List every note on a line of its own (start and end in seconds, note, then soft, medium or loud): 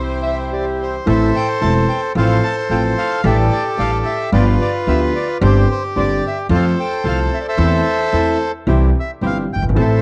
0.00 0.96 C2 medium
0.00 0.96 C3 medium
0.00 0.95 E3 medium
0.00 0.96 G3 soft
0.00 0.96 C4 medium
0.00 0.96 E4 medium
0.00 0.96 G4 medium
0.00 0.97 G4 medium
0.00 0.81 C5 medium
0.23 0.36 E5 medium
0.23 0.38 E5 medium
0.51 1.02 G4 medium
0.51 0.65 D5 medium
0.82 1.06 C5 medium
1.06 1.29 A1 medium
1.06 1.30 A1 medium
1.06 1.30 A2 medium
1.06 1.29 E3 medium
1.06 1.29 A3 medium
1.06 1.30 C4 medium
1.06 1.30 E4 medium
1.06 1.30 A4 medium
1.06 2.12 A4 medium
1.06 2.12 C5 medium
1.06 1.36 E5 medium
1.36 1.48 G5 loud
1.61 1.84 E1 medium
1.61 1.84 E2 medium
1.61 1.84 E3 medium
1.61 1.84 A3 soft
1.61 1.84 C4 soft
1.61 1.84 C4 medium
1.61 1.84 E4 soft
1.61 1.84 A4 medium
1.61 1.74 A5 loud
1.89 2.01 G5 medium
2.15 2.38 A1 medium
2.15 2.39 A1 medium
2.15 2.38 A2 loud
2.15 2.39 F3 medium
2.15 2.38 A3 medium
2.15 2.39 C4 medium
2.15 2.39 F4 medium
2.15 2.39 A4 medium
2.15 3.21 A4 medium
2.15 3.21 C5 medium
2.15 2.44 F5 medium
2.44 2.56 A5 loud
2.69 2.92 A1 medium
2.69 2.93 A1 medium
2.69 2.93 A2 medium
2.69 2.93 F3 medium
2.69 2.93 A3 soft
2.69 2.93 C4 medium
2.69 2.93 C4 soft
2.69 2.93 F4 medium
2.69 2.93 A4 medium
2.69 2.83 G5 medium
2.98 3.26 F5 medium
3.24 3.47 A1 loud
3.24 3.47 A1 medium
3.24 3.47 A2 medium
3.24 3.47 G3 medium
3.24 3.47 A3 medium
3.24 3.47 D4 medium
3.24 3.47 G4 medium
3.24 4.30 G4 medium
3.24 3.47 A4 medium
3.24 4.30 A4 medium
3.24 3.37 E5 medium
3.52 3.64 D5 medium
3.77 4.01 A1 medium
3.77 4.01 A2 medium
3.77 4.01 G3 medium
3.77 4.01 A3 soft
3.77 4.01 D4 soft
3.77 4.01 D4 medium
3.77 4.01 G4 soft
3.77 4.01 A4 medium
3.77 4.02 A4 medium
3.77 3.91 F5 loud
4.05 4.31 E5 medium
4.32 4.55 G1 medium
4.32 4.56 G1 medium
4.32 4.56 G2 medium
4.32 4.56 F3 medium
4.32 4.55 B3 medium
4.32 4.55 D4 medium
4.32 4.55 F4 medium
4.32 5.38 F4 medium
4.32 4.56 G4 loud
4.32 4.56 G4 medium
4.32 5.38 B4 medium
4.32 4.45 D5 medium
4.61 4.73 D5 medium
4.87 5.10 D2 medium
4.87 5.10 D3 medium
4.87 5.10 F3 soft
4.87 5.10 B3 soft
4.87 5.10 B3 medium
4.87 5.10 D4 soft
4.87 5.10 F4 medium
4.87 5.10 G4 medium
4.87 5.00 E5 medium
5.16 5.28 D5 medium
5.41 5.64 G1 medium
5.41 5.64 G1 loud
5.41 5.64 G2 medium
5.41 5.64 D3 medium
5.41 5.64 G3 medium
5.41 5.64 C4 medium
5.41 5.64 D4 medium
5.41 5.64 G4 medium
5.41 6.47 G4 medium
5.41 5.68 C5 medium
5.71 5.83 C5 medium
5.96 6.18 G1 medium
5.96 6.19 G1 medium
5.96 6.19 G2 medium
5.96 6.19 D3 medium
5.96 6.19 G3 soft
5.96 6.19 C4 medium
5.96 6.19 C4 soft
5.96 6.18 D4 medium
5.96 6.19 G4 medium
5.96 6.25 D5 medium
6.27 6.38 E5 medium
6.49 6.72 F2 loud
6.49 6.73 F2 loud
6.49 6.73 F3 medium
6.49 6.73 A3 medium
6.49 6.72 C4 medium
6.49 6.73 C4 medium
6.49 6.73 F4 medium
6.49 6.73 A4 medium
6.49 7.47 C5 medium
6.54 7.47 A4 medium
6.54 6.65 F5 medium
6.80 7.04 G5 medium
7.04 7.27 C2 medium
7.04 7.28 C3 medium
7.04 7.27 F3 medium
7.04 7.27 A3 soft
7.04 7.27 C4 medium
7.04 7.28 C4 soft
7.04 7.27 F4 medium
7.04 7.27 A4 medium
7.08 7.20 F5 medium
7.34 7.39 E5 medium
7.41 7.47 D5 medium
7.48 8.51 A4 medium
7.48 8.51 C5 medium
7.48 8.38 E5 loud
7.58 7.81 E2 medium
7.58 7.81 E2 loud
7.58 7.81 E3 medium
7.58 7.81 A3 medium
7.58 7.81 C4 medium
7.58 7.81 E4 medium
7.58 7.81 A4 medium
7.58 7.81 A4 loud
8.12 8.35 E2 medium
8.12 8.36 E2 medium
8.12 8.36 E3 medium
8.12 8.36 A3 soft
8.12 8.36 C4 medium
8.12 8.36 C4 soft
8.12 8.35 E4 medium
8.12 8.36 A4 medium
8.67 8.90 C2 medium
8.67 8.90 C2 loud
8.67 8.90 C3 medium
8.67 8.90 E3 medium
8.67 8.90 G3 medium
8.67 8.90 C4 medium
8.67 8.90 E4 medium
8.67 8.90 G4 medium
9.00 9.11 E5 medium
9.21 9.44 G1 medium
9.21 9.45 G1 medium
9.21 9.45 G2 medium
9.21 9.45 E3 soft
9.21 9.45 G3 soft
9.21 9.45 C4 soft
9.21 9.45 C4 medium
9.21 9.45 E4 soft
9.21 9.45 G4 medium
9.26 9.38 F5 medium
9.53 9.62 F#1 medium
9.53 9.63 F#1 soft
9.53 9.65 G5 medium
9.62 9.68 G1 medium
9.62 9.69 G1 medium
9.69 9.76 G#1 medium
9.75 9.99 A1 medium
9.75 9.99 A2 medium
9.75 9.99 E3 medium
9.75 9.99 A3 medium
9.75 9.99 C4 medium
9.75 9.99 E4 medium
9.75 9.99 A4 medium
9.75 10.02 A4 medium
9.79 10.02 C5 medium
9.79 10.02 E5 medium